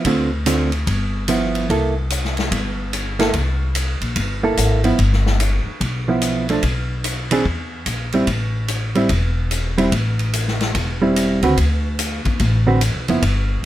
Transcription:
0.05 upright bass D2, hollow-body jazz guitar D3 A3 C4 F4, kick, ride
0.46 hollow-body jazz guitar D3 A3 C4 F4, hi-hat pedal, ride
0.72 ride
0.87 upright bass G1, kick, ride
1.28 hollow-body jazz guitar F3 B3 E4, hi-hat pedal, ride
1.55 ride
1.69 upright bass C2, hollow-body jazz guitar A#3 E4 A4, kick, ride
2.10 hi-hat pedal, ride
2.25 snare
2.37 snare, ride
2.51 upright bass G1, kick, ride
2.93 hi-hat pedal, ride
3.19 hollow-body jazz guitar A#3 E4 A4, snare, ride
3.33 upright bass C2, kick, ride
3.75 hi-hat pedal, ride
4.01 upright bass A#1, ride
4.16 upright bass G1, kick, ride
4.43 hollow-body jazz guitar A#3 E4 A4
4.57 upright bass G#1, hi-hat pedal, ride
4.84 hollow-body jazz guitar F3 B3 E4, ride
4.98 upright bass G1, kick, ride
5.13 snare
5.26 snare
5.40 hi-hat pedal, ride
5.66 muted upright bass stroke
5.80 upright bass B1, kick, ride
6.08 hollow-body jazz guitar F3 B3 E4
6.22 hi-hat pedal, ride
6.49 hollow-body jazz guitar F3 A3 D4, ride
6.63 upright bass B1, kick, ride
7.04 hi-hat pedal, ride
7.31 hollow-body jazz guitar E3 C4 D4 G#4, ride
7.45 upright bass E2, kick
7.86 upright bass A#1, hi-hat pedal, ride
8.12 hollow-body jazz guitar G3 C4 E4, ride
8.27 upright bass A1, kick, ride
8.68 hi-hat pedal, ride
8.95 hollow-body jazz guitar G3 C4 E4, ride
9.09 upright bass E1, kick, ride
9.51 hi-hat pedal, ride
9.78 hollow-body jazz guitar G3 C4 E4, ride
9.92 upright bass A1, kick, ride
10.19 ride
10.33 hi-hat pedal, ride
10.48 snare
10.61 snare, ride
10.75 upright bass E1, kick, ride
11.02 hollow-body jazz guitar G3 C4 E4
11.16 hi-hat pedal, ride
11.42 upright bass C#2, hollow-body jazz guitar D3 C4 F#4 B4, ride
11.57 upright bass D2, kick, ride
11.99 hi-hat pedal, ride
12.25 upright bass D#2, kick, ride
12.39 upright bass A1, kick, ride
12.67 hollow-body jazz guitar D3 C4 F#4 B4
12.81 hi-hat pedal, ride
12.94 upright bass B1
13.08 upright bass F#1, hollow-body jazz guitar F3 B3 E4, ride
13.22 upright bass G1, kick, ride

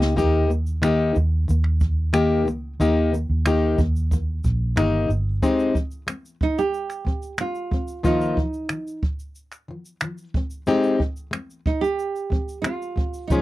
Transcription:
Already playing: fingered electric bass C#2, steel-string acoustic guitar A#3 D#4 G4
0.02 snare
0.16 fingered electric bass D#2, steel-string acoustic guitar D#3 A#3 D#4 G4, kick, shaker
0.47 steel-string acoustic guitar D#3 A#3, shaker
0.67 shaker
0.82 steel-string acoustic guitar D#3 A#3 D#4 G4, finger snap, shaker
1.14 fingered electric bass D#2, steel-string acoustic guitar D#3, shaker
1.48 fingered electric bass D#2, steel-string acoustic guitar D#3 A#3, shaker
1.64 finger snap
1.80 kick, shaker
2.13 steel-string acoustic guitar D#3 A#3 D#4 G4, finger snap, shaker
2.45 fingered electric bass C#2, steel-string acoustic guitar D#3 A#3, shaker
2.80 fingered electric bass D#2, steel-string acoustic guitar D#3 A#3 D#4 G4, shaker
3.13 steel-string acoustic guitar D#3 A#3, shaker
3.30 fingered electric bass D#2
3.46 steel-string acoustic guitar D#3 A#3 D#4 G4, finger snap, shaker
3.78 fingered electric bass D#2, steel-string acoustic guitar D#3 A#3, kick, shaker
3.96 shaker
4.11 steel-string acoustic guitar D#3 A#3, kick, shaker
4.44 fingered electric bass A#1, kick, shaker
4.76 fingered electric bass G1, steel-string acoustic guitar D#3 A#3 D#4 G4, finger snap, shaker
5.09 fingered electric bass G1, steel-string acoustic guitar D#3 A#3, shaker
5.42 steel-string acoustic guitar G#3 C4 D#4 G4, kick, shaker
5.59 shaker
5.74 steel-string acoustic guitar G#3, kick, shaker
5.91 shaker
6.07 steel-string acoustic guitar G#3 C4, finger snap, shaker
6.25 shaker
6.41 nylon-string guitar D#4, kick
6.58 nylon-string guitar G4, shaker
6.74 shaker
6.90 finger snap, shaker
7.05 steel-string acoustic guitar G#3 C4, kick
7.22 shaker
7.38 steel-string acoustic guitar G#3 C4, nylon-string guitar F4, finger snap, shaker
7.55 shaker
7.71 steel-string acoustic guitar G#3 C4, kick
7.88 shaker
8.03 steel-string acoustic guitar D#3 F3 A#3 D#4 F4, nylon-string guitar D#4, kick, shaker
8.21 shaker
8.37 steel-string acoustic guitar D#3 F3, kick
8.54 shaker
8.69 steel-string acoustic guitar D#3 F3, finger snap, shaker
8.87 shaker
9.03 kick
9.19 shaker
9.35 shaker
9.52 finger snap, shaker
9.68 steel-string acoustic guitar D#3 F3
9.85 shaker
10.01 steel-string acoustic guitar D#3 F3, finger snap, shaker
10.18 shaker
10.34 steel-string acoustic guitar G#3 C4, kick
10.50 shaker
10.67 steel-string acoustic guitar G#3 C4 D#4 G4, shaker
10.83 shaker
10.99 steel-string acoustic guitar G#3 C4, kick
11.16 shaker
11.31 steel-string acoustic guitar G#3 C4, finger snap, shaker
11.50 shaker
11.66 nylon-string guitar D#4, kick
11.81 nylon-string guitar G4, shaker
11.99 shaker
12.16 shaker
12.30 steel-string acoustic guitar G#3 C4, kick
12.49 shaker
12.62 steel-string acoustic guitar G#3, nylon-string guitar F4, finger snap, shaker
12.66 steel-string acoustic guitar C4
12.82 shaker
12.96 steel-string acoustic guitar G#3 C4, kick
13.14 shaker
13.28 steel-string acoustic guitar C#3 F3 G#3, nylon-string guitar D#4, kick, shaker
13.32 steel-string acoustic guitar C#4 F4

